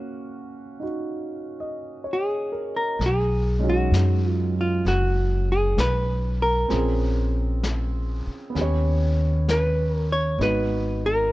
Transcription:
0.00 2.96 A#3 soft
0.00 2.98 C#4 soft
0.00 0.81 F#4 soft
0.00 2.05 F#4 medium
0.00 3.00 F5 soft
0.80 2.98 D#4 soft
0.80 2.99 F#4 soft
1.60 2.25 D#5 soft
2.04 2.79 C#5 soft
2.13 2.75 G#4 medium
2.52 3.18 A#4 soft
2.77 3.03 A#4 medium
2.99 3.88 B1 medium
2.99 brush sweep soft
2.99 snare soft
3.06 3.68 G#4 medium
3.59 6.68 G#3 soft
3.59 6.68 C#4 soft
3.59 6.70 D#4 soft
3.64 6.70 F#3 medium
3.69 4.27 F#4 medium
3.91 4.80 F#2 medium
3.91 brush sweep soft
3.91 snare soft
3.91 hi-hat pedal soft
4.27 4.55 F4 medium
4.61 4.85 F4 medium
4.85 5.73 F#1 medium
4.85 5.52 F#4 medium
4.85 brush sweep soft
4.85 snare soft
5.52 5.80 G#4 medium
5.77 6.65 B1 medium
5.77 6.42 B4 medium
5.77 brush sweep soft
5.77 snare soft
5.77 hi-hat pedal soft
6.42 9.58 A#4 medium
6.68 8.23 A#1 medium
6.68 8.54 C4 soft
6.68 8.53 C#4 soft
6.68 8.55 F4 soft
6.68 8.55 G#4 soft
6.68 brush sweep soft
6.68 snare soft
7.63 brush sweep soft
7.63 snare soft
7.63 hi-hat pedal soft
8.27 muted upright bass stroke soft
8.50 10.38 B3 soft
8.55 10.36 D#2 medium
8.55 10.40 C#4 soft
8.55 10.42 G4 soft
8.55 brush sweep soft
8.55 snare soft
8.61 10.43 C#5 soft
9.48 9.95 B4 medium
9.48 brush sweep soft
9.48 snare soft
9.48 hi-hat pedal soft
9.95 10.09 A#4 medium
10.12 10.42 C#5 medium
10.39 11.32 G#1 medium
10.39 11.32 B3 soft
10.39 11.32 D#4 soft
10.39 11.32 F#4 soft
10.39 brush sweep soft
10.39 snare soft
10.43 11.06 B4 medium
11.06 11.32 A#4 medium

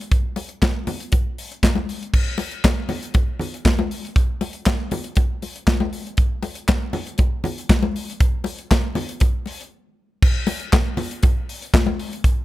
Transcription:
0.01 closed hi-hat soft
0.11 kick loud
0.11 closed hi-hat medium
0.36 open hi-hat medium
0.36 muted conga medium
0.49 closed hi-hat soft
0.62 kick loud
0.62 snare loud
0.62 clap medium
0.62 closed hi-hat medium
0.62 high conga medium
0.87 open hi-hat medium
0.87 muted conga medium
0.87 low conga medium
1.00 closed hi-hat soft
1.12 kick loud
1.12 closed hi-hat medium
1.12 muted conga soft
1.38 open hi-hat medium
1.52 closed hi-hat soft
1.63 kick loud
1.63 snare loud
1.63 clap loud
1.63 closed hi-hat medium
1.63 high conga medium
1.75 high conga medium
1.89 open hi-hat medium
2.03 closed hi-hat soft
2.14 kick loud
2.14 crash loud
2.38 open hi-hat medium
2.38 muted conga medium
2.51 closed hi-hat soft
2.64 kick loud
2.64 snare loud
2.64 clap medium
2.64 closed hi-hat medium
2.64 high conga medium
2.89 open hi-hat medium
2.89 muted conga medium
2.89 low conga medium
3.03 closed hi-hat soft
3.14 kick loud
3.14 closed hi-hat medium
3.14 muted conga soft
3.39 open hi-hat medium
3.39 low conga medium
3.54 closed hi-hat soft
3.65 kick loud
3.65 snare loud
3.65 clap medium
3.65 closed hi-hat medium
3.65 high conga medium
3.79 high conga medium
3.91 open hi-hat medium
4.05 closed hi-hat soft
4.16 kick loud
4.16 closed hi-hat medium
4.41 open hi-hat medium
4.41 muted conga medium
4.53 closed hi-hat soft
4.66 kick loud
4.66 snare loud
4.66 clap medium
4.66 closed hi-hat medium
4.66 high conga medium
4.91 open hi-hat medium
4.91 muted conga medium
4.91 low conga medium
5.04 closed hi-hat soft
5.16 kick loud
5.16 closed hi-hat medium
5.16 muted conga soft
5.42 open hi-hat medium
5.42 muted conga soft
5.56 closed hi-hat soft
5.67 kick loud
5.67 snare loud
5.67 clap medium
5.67 closed hi-hat medium
5.67 high conga medium
5.80 high conga medium
5.93 open hi-hat medium
6.07 closed hi-hat soft
6.17 kick loud
6.17 closed hi-hat medium
6.43 open hi-hat medium
6.43 muted conga medium
6.55 closed hi-hat soft
6.68 kick loud
6.68 snare loud
6.68 clap medium
6.68 closed hi-hat medium
6.68 high conga medium
6.93 open hi-hat medium
6.93 muted conga medium
6.93 low conga medium
7.07 closed hi-hat soft
7.18 kick loud
7.18 closed hi-hat medium
7.18 muted conga soft
7.44 open hi-hat medium
7.44 muted conga soft
7.44 low conga medium
7.58 closed hi-hat soft
7.69 kick loud
7.69 snare loud
7.69 clap loud
7.69 closed hi-hat medium
7.69 high conga medium
7.83 high conga medium
7.96 open hi-hat medium
8.10 closed hi-hat soft
8.20 kick loud
8.20 closed hi-hat medium
8.44 open hi-hat medium
8.44 muted conga medium
8.59 closed hi-hat soft
8.71 kick loud
8.71 snare loud
8.71 clap medium
8.71 closed hi-hat medium
8.71 high conga medium
8.95 open hi-hat medium
8.95 muted conga soft
8.95 low conga medium
9.09 closed hi-hat medium
9.20 kick loud
9.20 closed hi-hat medium
9.20 muted conga soft
9.46 open hi-hat medium
9.46 muted conga soft
9.61 closed hi-hat soft
10.22 kick loud
10.22 crash loud
10.47 open hi-hat medium
10.47 muted conga medium
10.60 closed hi-hat soft
10.72 kick loud
10.72 snare loud
10.72 clap medium
10.72 closed hi-hat medium
10.72 high conga medium
10.97 open hi-hat medium
10.97 muted conga medium
10.97 low conga medium
11.11 closed hi-hat medium
11.23 kick loud
11.23 closed hi-hat medium
11.23 muted conga soft
11.49 open hi-hat medium
11.62 closed hi-hat soft
11.74 kick loud
11.74 snare loud
11.74 clap loud
11.74 closed hi-hat medium
11.74 high conga medium
11.86 high conga medium
11.99 open hi-hat medium
12.13 closed hi-hat soft
12.24 kick loud
12.24 closed hi-hat medium

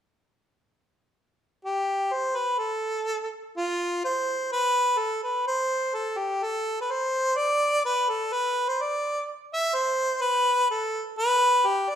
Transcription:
1.65 2.14 G4 medium
2.13 2.38 C5 medium
2.36 2.60 B4 medium
2.58 3.31 A4 medium
3.56 4.00 F4 medium
4.05 4.48 C5 medium
4.52 4.99 B4 medium
4.98 5.22 A4 medium
5.23 5.45 B4 medium
5.47 5.96 C5 medium
5.95 6.19 A4 medium
6.18 6.45 G4 medium
6.43 6.78 A4 medium
6.81 6.93 B4 medium
6.91 7.39 C5 medium
7.37 7.84 D5 loud
7.85 8.11 B4 medium
8.09 8.35 A4 medium
8.33 8.70 B4 loud
8.68 8.83 C5 medium
8.82 9.28 D5 medium
9.53 9.76 E5 medium
9.75 10.23 C5 medium
10.21 10.69 B4 loud
10.71 11.03 A4 medium
11.18 11.69 B4 loud
11.67 11.92 G4 medium
11.90 11.95 D5 medium

